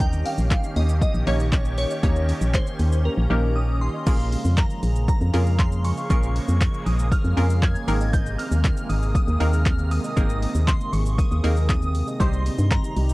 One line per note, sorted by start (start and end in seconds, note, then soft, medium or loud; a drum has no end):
0.00 0.24 D#2 loud
0.00 4.03 D#3 medium
0.00 0.56 A#3 medium
0.00 0.56 C#4 medium
0.00 1.76 C#4 medium
0.00 0.56 D#4 medium
0.00 0.56 G4 medium
0.00 4.03 G4 medium
0.00 0.56 A#4 medium
0.00 0.26 G5 loud
0.00 kick loud
0.00 closed hi-hat medium
0.00 shaker medium
0.13 shaker medium
0.26 0.33 C#4 medium
0.26 0.78 F5 loud
0.26 open hi-hat medium
0.26 shaker medium
0.38 0.58 A#1 medium
0.38 0.45 A#3 medium
0.38 shaker loud
0.51 kick loud
0.51 clap loud
0.51 closed hi-hat medium
0.51 shaker medium
0.63 shaker medium
0.76 1.06 D#2 medium
0.76 0.83 G4 medium
0.76 1.00 D#5 medium
0.76 open hi-hat medium
0.76 shaker soft
0.89 shaker medium
1.01 1.09 A#3 loud
1.01 1.25 D#5 loud
1.01 kick loud
1.01 closed hi-hat medium
1.01 shaker medium
1.14 1.24 A#1 loud
1.14 1.21 D#3 medium
1.14 shaker soft
1.27 1.86 A#1 loud
1.27 1.73 A#3 medium
1.27 1.73 C#4 medium
1.27 1.73 D#4 medium
1.27 1.73 G4 medium
1.27 1.77 C#5 loud
1.27 1.73 C#5 medium
1.27 1.34 D#5 medium
1.27 open hi-hat medium
1.27 shaker medium
1.40 1.47 G4 medium
1.40 shaker medium
1.52 1.60 C#4 medium
1.52 kick loud
1.52 clap loud
1.52 closed hi-hat medium
1.52 shaker medium
1.65 1.73 A#3 medium
1.65 shaker medium
1.78 1.85 D#3 medium
1.78 4.04 C#4 medium
1.78 2.50 C#5 loud
1.78 open hi-hat medium
1.78 shaker medium
1.91 1.98 D#5 medium
1.91 shaker medium
2.03 2.33 D#2 loud
2.03 2.65 A#3 medium
2.03 2.65 C#4 medium
2.03 2.65 D#4 medium
2.03 2.65 G4 medium
2.03 2.65 C#5 medium
2.03 2.11 D#5 loud
2.03 kick loud
2.03 closed hi-hat medium
2.03 shaker medium
2.16 shaker medium
2.29 2.36 C#4 medium
2.29 open hi-hat medium
2.29 shaker medium
2.41 2.61 A#1 medium
2.41 2.49 A#3 medium
2.41 shaker medium
2.54 2.61 D#3 medium
2.54 3.07 C5 loud
2.54 kick loud
2.54 clap loud
2.54 closed hi-hat medium
2.54 shaker medium
2.67 shaker medium
2.79 3.09 D#2 medium
2.79 2.87 G4 medium
2.79 open hi-hat medium
2.79 shaker soft
2.92 shaker medium
3.05 3.12 A#3 medium
3.05 3.77 A#4 medium
3.18 3.28 A#1 loud
3.18 3.25 D#3 medium
3.30 3.89 A#1 loud
3.30 3.77 A#3 medium
3.30 3.77 C#4 medium
3.30 3.77 D#4 medium
3.30 3.77 G4 medium
3.30 3.77 A#4 medium
3.30 3.38 D#5 medium
3.43 3.50 G4 medium
3.56 3.63 C#4 medium
3.56 3.82 D#6 medium
3.69 3.76 A#3 medium
3.81 3.88 D#3 medium
3.81 4.60 C6 medium
3.94 4.01 D#5 medium
4.07 4.36 A#1 loud
4.07 7.84 C#3 medium
4.07 12.16 G#3 medium
4.07 4.68 A#3 medium
4.07 12.16 A#3 medium
4.07 4.68 C#4 medium
4.07 4.69 F4 medium
4.07 4.69 G#4 medium
4.07 4.69 A#4 medium
4.07 4.14 F5 loud
4.07 kick loud
4.07 closed hi-hat medium
4.07 crash loud
4.07 shaker medium
4.20 shaker medium
4.32 4.39 C#4 medium
4.32 open hi-hat medium
4.32 shaker medium
4.45 4.65 F2 medium
4.45 4.52 A#3 medium
4.45 shaker medium
4.57 4.65 F3 medium
4.57 5.07 A#5 medium
4.57 kick loud
4.57 clap loud
4.57 closed hi-hat medium
4.57 shaker medium
4.70 shaker medium
4.83 5.12 A#1 medium
4.83 4.90 G#4 medium
4.83 open hi-hat medium
4.83 shaker soft
4.96 shaker medium
5.08 5.61 A#5 medium
5.08 kick loud
5.08 closed hi-hat medium
5.08 shaker medium
5.21 5.31 F2 loud
5.21 5.28 F3 medium
5.21 shaker soft
5.33 5.93 F2 medium
5.33 5.80 A#3 medium
5.33 5.80 C#4 medium
5.33 5.80 F4 medium
5.33 5.80 G#4 medium
5.33 5.80 A#4 medium
5.33 5.41 F5 medium
5.33 open hi-hat medium
5.33 shaker medium
5.46 5.54 G#4 medium
5.46 shaker medium
5.59 5.67 C#4 medium
5.59 5.85 C6 medium
5.59 kick loud
5.59 clap loud
5.59 closed hi-hat medium
5.59 shaker medium
5.72 5.79 A#3 medium
5.72 shaker medium
5.84 5.92 F3 medium
5.84 6.09 C#6 medium
5.84 open hi-hat medium
5.84 shaker medium
5.97 6.05 F5 medium
5.97 shaker medium
6.10 6.40 A#1 loud
6.10 6.72 A#3 medium
6.10 6.72 C#4 medium
6.10 6.72 F4 medium
6.10 6.72 G#4 medium
6.10 6.72 A#4 medium
6.10 6.17 F5 loud
6.10 6.89 C#6 loud
6.10 kick loud
6.10 closed hi-hat medium
6.10 shaker medium
6.23 shaker medium
6.36 6.43 C#4 medium
6.36 open hi-hat medium
6.36 shaker medium
6.48 6.68 F2 medium
6.48 6.55 A#3 medium
6.48 shaker loud
6.61 6.68 F3 medium
6.61 kick loud
6.61 clap loud
6.61 closed hi-hat medium
6.61 shaker medium
6.74 shaker medium
6.86 7.16 A#1 medium
6.86 6.94 G#4 medium
6.86 7.12 D#6 medium
6.86 open hi-hat medium
6.86 shaker soft
6.99 shaker medium
7.12 7.64 F6 loud
7.12 kick loud
7.12 closed hi-hat medium
7.12 shaker medium
7.24 7.34 F2 loud
7.24 7.32 F3 medium
7.24 shaker soft
7.37 7.76 F2 loud
7.37 7.83 A#3 medium
7.37 7.83 C#4 medium
7.37 7.83 F4 medium
7.37 7.84 G#4 medium
7.37 7.84 A#4 medium
7.37 7.44 F5 medium
7.37 open hi-hat medium
7.37 shaker medium
7.50 7.57 G#4 medium
7.50 shaker medium
7.62 7.70 C#4 medium
7.62 8.15 G#6 loud
7.62 kick loud
7.62 clap loud
7.62 closed hi-hat medium
7.62 shaker medium
7.75 7.82 A#3 medium
7.75 shaker medium
7.88 8.37 G#1 loud
7.88 13.14 C3 medium
7.88 7.95 D#3 medium
7.88 8.69 A#3 medium
7.88 8.69 C4 medium
7.88 8.69 D#4 medium
7.88 8.69 G#4 medium
7.88 8.70 A#4 medium
7.88 open hi-hat medium
7.88 shaker medium
8.01 8.08 D#5 medium
8.01 shaker medium
8.13 8.21 D#5 loud
8.13 8.25 G6 loud
8.13 kick loud
8.13 closed hi-hat medium
8.13 shaker medium
8.26 shaker medium
8.39 8.46 C4 medium
8.39 8.86 F6 loud
8.39 open hi-hat medium
8.39 shaker medium
8.52 8.71 D#2 medium
8.52 8.59 A#3 medium
8.52 shaker loud
8.64 8.72 D#3 medium
8.64 kick loud
8.64 clap loud
8.64 closed hi-hat medium
8.64 shaker medium
8.77 shaker medium
8.89 9.19 G#1 medium
8.89 8.97 G#4 medium
8.89 9.13 D#6 medium
8.89 open hi-hat medium
8.89 shaker soft
9.03 shaker medium
9.15 9.22 A#3 loud
9.15 9.41 D#6 loud
9.15 kick loud
9.15 closed hi-hat medium
9.15 shaker medium
9.28 9.38 D#2 loud
9.28 9.35 D#3 medium
9.28 shaker soft
9.40 10.00 D#2 loud
9.40 9.87 A#3 medium
9.40 9.87 C4 medium
9.40 9.87 D#4 medium
9.40 9.87 G#4 medium
9.40 9.87 A#4 medium
9.40 9.48 D#5 medium
9.40 9.93 F6 loud
9.40 open hi-hat medium
9.40 shaker medium
9.53 9.61 G#4 medium
9.53 shaker medium
9.66 9.73 C4 medium
9.66 kick loud
9.66 clap loud
9.66 closed hi-hat medium
9.66 shaker medium
9.79 9.86 A#3 medium
9.79 shaker medium
9.91 9.99 D#3 medium
9.91 10.64 D#6 loud
9.91 open hi-hat medium
9.91 shaker medium
10.04 10.11 D#5 medium
10.04 shaker medium
10.17 10.46 G#1 loud
10.17 10.78 A#3 medium
10.17 10.79 C4 medium
10.17 10.79 D#4 medium
10.17 10.79 G#4 medium
10.17 10.79 A#4 medium
10.17 10.24 D#5 loud
10.17 kick loud
10.17 closed hi-hat medium
10.17 shaker medium
10.30 shaker medium
10.42 10.49 C4 medium
10.42 open hi-hat medium
10.42 shaker medium
10.55 10.75 D#2 medium
10.55 10.62 A#3 medium
10.55 shaker loud
10.67 10.75 D#3 medium
10.67 10.91 C6 medium
10.67 kick loud
10.67 clap loud
10.67 closed hi-hat medium
10.67 shaker medium
10.81 shaker medium
10.93 11.23 G#1 medium
10.93 11.00 G#4 medium
10.93 11.19 C#6 medium
10.93 open hi-hat medium
10.93 shaker medium
11.06 shaker medium
11.18 11.26 A#3 medium
11.18 11.68 D#6 medium
11.18 kick loud
11.18 closed hi-hat medium
11.18 shaker medium
11.31 11.41 D#2 loud
11.31 11.38 D#3 medium
11.31 shaker soft
11.44 12.03 D#2 medium
11.44 11.90 A#3 medium
11.44 11.90 C4 medium
11.44 11.90 D#4 medium
11.44 11.90 G#4 medium
11.44 11.90 A#4 medium
11.44 11.51 D#5 medium
11.44 open hi-hat medium
11.44 shaker medium
11.57 11.64 G#4 medium
11.57 shaker medium
11.69 11.77 C4 medium
11.69 12.22 D#6 loud
11.69 kick loud
11.69 clap loud
11.69 closed hi-hat medium
11.69 shaker medium
11.82 11.89 A#3 medium
11.82 shaker medium
11.95 12.02 D#3 medium
11.95 open hi-hat medium
11.95 shaker medium
12.08 12.15 D#5 medium
12.08 shaker medium
12.20 12.50 C2 loud
12.20 12.82 G3 medium
12.20 13.14 G3 medium
12.20 12.82 C4 medium
12.20 12.82 D#4 medium
12.20 13.14 D#4 medium
12.20 12.82 G4 medium
12.20 12.82 C5 medium
12.20 12.28 D#5 loud
12.20 12.73 C6 loud
12.20 kick loud
12.20 closed hi-hat medium
12.20 shaker medium
12.33 shaker medium
12.46 12.53 C4 medium
12.46 open hi-hat medium
12.46 shaker medium
12.59 12.78 G2 medium
12.59 12.66 G3 medium
12.59 shaker loud
12.71 13.14 A#5 medium
12.71 kick loud
12.71 clap loud
12.71 closed hi-hat medium
12.71 shaker medium
12.84 shaker medium
12.97 13.14 C2 medium
12.97 13.04 G4 medium
12.97 open hi-hat medium
12.97 shaker soft
13.09 shaker medium